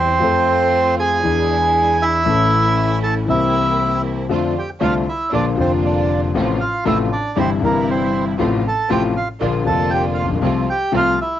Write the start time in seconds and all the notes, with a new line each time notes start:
Already playing: E2 E3 G3 C4 E4 G4 C5
0.00 C4
0.20 F2 F3 A3 C4 F4 A4
1.00 G#4 G#5
1.23 E2 E3 G#3 B3 D4 E4 G#4
2.02 E4 E5
2.24 A1 A2 E3 A3 C#4 E4 A4
3.03 A4 A5
3.26 C2 C3 E3 A#3 C4 E4
3.30 E4 G4 E5
4.29 F2 D3 F3 A3 C4 D4 F4
4.59 G4 G5
4.80 C2 C3 D3 A3 C4 D4 F4 F5
5.09 E4 E5
5.32 A#1 A#2 D3 F3 A#3 D4 F4 D5
5.56 F1 F2 D3 F3 A#3 D4 F4
5.60 C4 F4 C5
5.86 D4 D5
6.34 A1 A2 C3 F3 A3 C4 F4
6.61 F4 F5
6.85 A1 A2 C3 F3 A3 C4 E4 F4 E5
7.12 D4 D5
7.36 G1 G2 C3 E3 G3 C4 E4 C5
7.61 G1 G2 C3 E3 G3 A#3 C4 E4
7.65 A#4
7.90 C4 C5
8.38 A1 A2 C3 F3 A3 C4 F4
8.68 A4 A5
8.89 A1 A2 C3 F3 A3 C4 F4 G4 G5
9.17 F4 F5
9.40 A#1 A#2 D3 F3 A#3 D4 F4
9.64 F1 F2 D3 F3 A#3 D4 F4 A4 A5
9.91 G4 G5
10.14 F4 F5
10.23 A1
10.29 A#1
10.35 B1
10.41 C2 C3 F3 A3 C4 F4
10.70 G4 G5
10.92 C2 C3 F3 A3 C4 F4
10.97 F4 F5
11.21 E4 E5